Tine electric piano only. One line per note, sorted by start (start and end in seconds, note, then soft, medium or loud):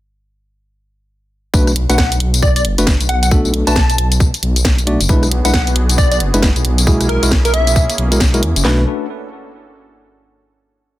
1.54 1.71 A3 medium
1.54 1.71 D4 medium
1.54 1.71 F#4 medium
1.54 1.71 B4 loud
1.90 1.97 A3 medium
1.90 1.97 D4 medium
1.90 1.97 F#4 medium
1.90 1.97 B4 loud
2.78 2.92 A3 medium
2.78 2.92 D4 medium
2.78 2.92 F#4 medium
2.78 2.92 B4 loud
3.31 3.64 A3 medium
3.31 3.64 D4 medium
3.31 3.64 F#4 medium
3.31 3.64 A4 medium
3.67 3.75 A3 loud
3.67 3.75 D4 medium
3.67 3.75 F#4 medium
3.67 3.75 B4 loud
4.87 4.99 A3 loud
4.87 4.99 D4 medium
4.87 4.99 F#4 medium
4.87 4.99 D5 loud
5.09 5.26 G#3 medium
5.09 5.26 D4 medium
5.09 5.26 E4 medium
5.09 5.26 B4 loud
5.45 5.53 G#3 loud
5.45 5.53 D4 medium
5.45 5.53 E4 medium
5.45 5.53 B4 loud
6.34 6.48 G#3 medium
6.34 6.48 D4 medium
6.34 6.48 E4 medium
6.34 6.48 B4 loud
6.87 7.20 G#3 medium
6.87 7.20 E4 medium
6.87 7.20 F#4 medium
6.87 7.20 G#4 medium
7.23 7.30 G#3 loud
7.23 7.30 E4 medium
7.23 7.30 F#4 medium
7.23 7.30 A#4 loud
8.12 8.19 G#3 medium
8.12 8.19 E4 medium
8.12 8.19 F#4 medium
8.12 8.19 A#4 medium
8.34 8.41 G#3 medium
8.34 8.41 E4 medium
8.34 8.41 F#4 medium
8.34 8.41 A#4 loud
8.65 8.82 A3 medium
8.65 8.82 D4 medium
8.65 8.82 F#4 medium
8.65 8.82 B4 medium